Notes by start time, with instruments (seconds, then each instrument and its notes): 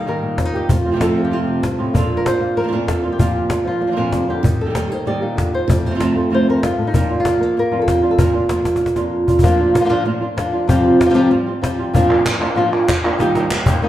Already playing: nylon-string guitar D#3 A#3
0.06 nylon-string guitar D#3 G3 A#3 D#4 G4 A#4, cajon slap
0.23 nylon-string guitar A#2
0.38 nylon-string guitar C4, muted nylon-string guitar stroke, cajon bass, cajon slap
0.45 nylon-string guitar D#4
0.54 nylon-string guitar A#3 D#4 G4, cajon slap
0.69 nylon-string guitar F2 F3 A3 C4 F4, muted nylon-string guitar stroke, cajon bass
0.85 nylon-string guitar F3 A3 C4 F4
0.91 nylon-string guitar C3 F3 A3 C4 F4 G4
0.95 nylon-string guitar C3 F3 A3 C4 F4
1.00 nylon-string guitar F2 C3 F3 A3 C4 F4 A4, cajon slap
1.16 nylon-string guitar F3 C4
1.25 nylon-string guitar G4
1.31 nylon-string guitar F2 C3 F3 A3 C4 F4, cajon slap
1.47 nylon-string guitar C3 C4
1.62 nylon-string guitar G2, muted nylon-string guitar stroke, cajon slap
1.78 nylon-string guitar A2 F3 A3 C4 F4
1.93 nylon-string guitar A#2 F3 A#3 D4 F4 A4, cajon bass
2.17 nylon-string guitar A#4
2.25 nylon-string guitar A#3 D4 F4 C5, cajon slap
2.40 nylon-string guitar A#3 F4
2.56 nylon-string guitar F3 D4 F4 A#4, muted nylon-string guitar stroke, cajon slap
2.63 nylon-string guitar F3 A#3 D4 F4
2.67 nylon-string guitar F2 F3 A#3 D4 F4
2.72 nylon-string guitar A#2 F3 A#3 D4 F4
2.87 nylon-string guitar F3 A#3 D4 F4 A4, cajon bass, cajon slap
3.03 nylon-string guitar A#3 D4 F4
3.12 nylon-string guitar G4
3.18 nylon-string guitar A#2 F3 A#3 D4 F4, cajon bass
3.50 nylon-string guitar A#3 D4 F4, cajon slap
3.65 nylon-string guitar F3 F4
3.80 nylon-string guitar A#3, muted nylon-string guitar stroke
3.87 nylon-string guitar F3 A#3 D4 F4
3.91 nylon-string guitar F3 A#3 D4 F4
3.96 nylon-string guitar F2 A#2 F3 A#3 D4 F4
4.12 nylon-string guitar C3 F3 A#3 D4 F4, cajon slap
4.28 nylon-string guitar D3 A#3 D4 F4 G4
4.43 nylon-string guitar D#3 D#4, muted nylon-string guitar stroke, cajon bass
4.59 nylon-string guitar A4, cajon slap
4.65 nylon-string guitar G3 A#3 D#4 G4
4.70 nylon-string guitar G3 A#3 D#4 G4
4.74 nylon-string guitar D#3 G3 A#3 D#4 G4 A#4, cajon slap
4.89 nylon-string guitar A#3 D#4 G4 C5
5.05 nylon-string guitar D#3 G3 A#3 D#4 G4 D5
5.21 nylon-string guitar A#2 A#3 D#4 G4
5.35 nylon-string guitar D3, muted nylon-string guitar stroke, cajon bass, cajon slap
5.53 nylon-string guitar D#3 C5, cajon slap
5.68 nylon-string guitar F2 A3 C4 D5, muted nylon-string guitar stroke, cajon bass
5.85 nylon-string guitar C3 F3 A3 C4 F4 C5
5.90 nylon-string guitar C3 F3 A3 C4 F4
5.95 nylon-string guitar C3 F3 A3 C4 F4
5.99 nylon-string guitar F2 C3 F3 A3 C4 F4 D5, cajon slap
6.15 nylon-string guitar F3 A3 C4 F4
6.30 nylon-string guitar F2 C3 F3 A3 C4 F4, cajon slap
6.34 nylon-string guitar C5
6.47 nylon-string guitar F2 F3 A3 C4 F4 A#4
6.63 nylon-string guitar G2 F4, muted nylon-string guitar stroke, cajon slap
6.78 nylon-string guitar A2
6.87 nylon-string guitar D#4
6.93 nylon-string guitar A#2 F3 A#3 D4 F4, cajon bass
7.09 nylon-string guitar A#3 D4 F4, cajon slap
7.20 nylon-string guitar F4
7.25 nylon-string guitar F3 A#3 D4 F4 G4, cajon slap
7.41 nylon-string guitar A#3 A4
7.57 nylon-string guitar A#4, muted nylon-string guitar stroke, cajon slap
7.71 nylon-string guitar F2 A#3 D4 F4
7.82 nylon-string guitar A4
7.88 nylon-string guitar G4, cajon bass, cajon slap
8.03 nylon-string guitar A#3 D4 F4
8.11 nylon-string guitar A4
8.18 nylon-string guitar A#2 F3 A#3 D4 F4 A#4, cajon bass
8.34 nylon-string guitar A#3 D4 F4
8.49 nylon-string guitar F3 A#3 D4 F4, cajon slap
8.65 nylon-string guitar A#3, cajon slap
8.76 cajon slap
8.81 muted nylon-string guitar stroke
8.86 cajon slap
8.96 nylon-string guitar F2 A#3 D4 F4, cajon slap
9.27 nylon-string guitar A#3 D4 F4, cajon bass
9.39 nylon-string guitar A#2, cajon bass
9.43 nylon-string guitar A#2 F3 A#3 D4 F4, cajon bass
9.59 nylon-string guitar A#3 D4 F4
9.74 nylon-string guitar A#3 D4 F4, muted nylon-string guitar stroke, cajon slap
9.80 nylon-string guitar F3 A#3 D4 F4
9.84 nylon-string guitar F3 A#3 D4 F4
9.89 nylon-string guitar A#2 F3 A#3 D4 F4
10.05 nylon-string guitar A#2 F3 A#3 D4 F4, muted nylon-string guitar stroke
10.21 nylon-string guitar A#3 D4 F4
10.37 nylon-string guitar F3 A#3 D4 F4, muted nylon-string guitar stroke, cajon slap
10.53 nylon-string guitar A#3 D4 F4
10.68 nylon-string guitar F2 C3 F3 G3 C4 F4 G4, cajon bass
10.84 nylon-string guitar G3 C4 F4
10.99 nylon-string guitar C3 F3 C4 F4 G4, muted nylon-string guitar stroke, cajon slap
11.05 nylon-string guitar C3 F3 C4 F4 G4
11.10 nylon-string guitar C3 F3 C4 F4 G4
11.14 nylon-string guitar F2 C3 F3 G3 C4 F4 G4
11.31 nylon-string guitar F3 G3 C4 F4, muted nylon-string guitar stroke
11.46 nylon-string guitar G3 C4 F4
11.62 nylon-string guitar F3 C4 F4 G4, muted nylon-string guitar stroke, cajon slap
11.79 nylon-string guitar G3 C4 F4
11.93 nylon-string guitar A#2 F3 A#3 D4 F4, cajon bass
12.09 nylon-string guitar A#3 D4 F4
12.25 nylon-string guitar F3 A#3 D4 F4, muted nylon-string guitar stroke, cajon slap, clap
12.39 nylon-string guitar A#3 D4 F4, clap
12.55 nylon-string guitar A#2 F3 A#3 D4 F4, muted nylon-string guitar stroke
12.72 nylon-string guitar A#3 D4 F4, clap
12.88 nylon-string guitar A#3 D4 F4, muted nylon-string guitar stroke, cajon bass, cajon slap, clap
13.04 nylon-string guitar A#3 D4 F4, clap
13.19 nylon-string guitar D#3 G3 A#3 D#4 G4, cajon slap
13.34 nylon-string guitar A#3 D#4 G4, cajon slap, clap
13.50 nylon-string guitar G3 A#3 D#4 G4, muted nylon-string guitar stroke, cajon slap, clap
13.66 nylon-string guitar A#3 D#4 G4, cajon bass, clap
13.82 nylon-string guitar D#3 A#3 D#4 G4, muted nylon-string guitar stroke